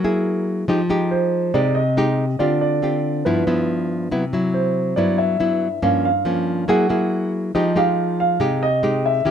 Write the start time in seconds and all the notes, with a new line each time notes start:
Already playing: F#3 A#4
0.04 A#3 E4 G#4
0.68 F3 G#3 D#4 G4
0.90 G#3 D#4 G4
1.11 C5
1.54 C3 G#3 D#4 G4 D5
1.75 D#5
1.97 G#3 D#4 G4
2.39 D3 C4 F4 G4 D5
2.61 D5
2.82 C4 F4 G4
3.25 G2 F3 B3 E4 B4
3.47 F3 B3 E4
4.11 C3 F#3 B3 E4
4.33 F#3 E4
4.54 C5
4.96 G2 F#3 B3 E4 D5
5.18 E5
5.40 F#3 B3 E4
5.82 G2 F3 A#3 C#4 F5
6.05 F5
6.25 F3 A#3 C#4
6.68 F#3 A#3 E4 G#4 F#5
6.89 A#3 E4 G#4
7.55 F3 G#3 D#4 G4 D#5
7.76 G#3 D#4 G4 F5
8.20 F5
8.40 C3 G#3 D#4 G4
8.63 D#5
8.83 G#3 D#4 G4
9.06 E5
9.25 D#3 C#4 E4 G4